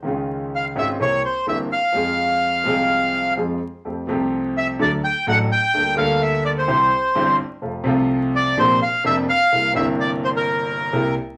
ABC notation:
X:1
M:4/4
L:1/16
Q:1/4=127
K:Fm
V:1 name="Bandoneon"
z4 f2 =e2 d2 c2 e2 f2- | f12 z4 | [K:F] z6 e2 d2 g2 ^f2 g2- | g2 f2 e2 d c6- c z2 |
z6 d2 c2 f2 e2 f2- | f2 e2 d2 c B6- B z2 |]
V:2 name="Grand piano" clef=bass
[D,,D,E,A,DF]6 [A,,,A,,E,A,DF]2 [C,,C,=E,B,CG]2 z2 [G,,,G,,E,B,CG]2 z2 | [F,,F,A,CA]6 [C,,C,F,A,CA]6 [F,,F,A,CA]2 z2 | [K:F] [F,,F,A,CG]2 [C,,C,F,A,CG]6 [D,,D,^F,A,DA]2 z2 [A,,,A,,F,A,DA]2 z2 | [D,,D,G,B,DA]2 [D,,D,G,B,DA]6 [C,,C,E,G,CG]2 z2 [G,,,G,,E,G,CG]2 z2 |
[F,,C,F,A,F]2 [C,,C,F,A,F]6 [B,,,B,,C,F,B,D]2 z2 [F,,,F,,C,F,B,D]2 z2 | [C,,C,G,B,E]2 [G,,,G,,C,G,B,E]8- [G,,,G,,C,G,B,E]2 [C,,C,G,B,E]2 z2 |]